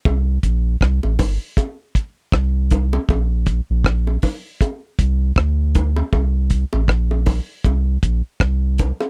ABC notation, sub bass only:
X:1
M:4/4
L:1/16
Q:"Swing 16ths" 1/4=79
K:Bblyd
V:1 name="Sub bass" clef=bass
C,,2 B,,,2 C,, A,,, G,,, z4 z C,,4 | B,,,3 B,,, B,,,2 z4 C,,2 D,,4 | C,,3 A,,, B,,,3 z C,,2 B,,, z C,,3 z |]